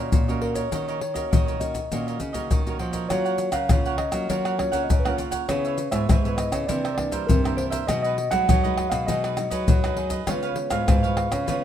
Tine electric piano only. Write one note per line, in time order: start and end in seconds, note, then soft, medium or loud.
0.00 0.46 C#5 medium
0.42 0.56 A#4 medium
0.55 1.00 C#5 medium
1.01 1.63 C#5 medium
1.60 2.46 D#5 medium
3.09 3.56 C#5 medium
3.53 3.96 F5 loud
3.98 4.27 D#5 medium
4.30 4.58 C#5 medium
4.60 4.82 C#5 medium
4.84 4.93 D#5 medium
4.93 5.02 C#5 medium
5.00 5.10 B4 medium
5.08 5.19 C#5 medium
5.48 5.95 C#5 medium
5.91 6.35 E5 medium
6.37 6.69 D#5 medium
6.67 6.93 D5 medium
6.95 7.25 D5 medium
7.27 7.41 A#4 medium
7.57 7.64 C5 medium
7.71 7.88 E5 medium
7.87 8.01 D#5 medium
8.03 8.31 D#5 medium
8.31 8.94 F#5 loud
8.90 9.06 F5 medium
9.07 9.64 D#5 medium
9.68 10.10 C#5 medium
10.29 10.75 C#5 medium
10.71 11.14 F5 medium
11.18 11.64 F5 medium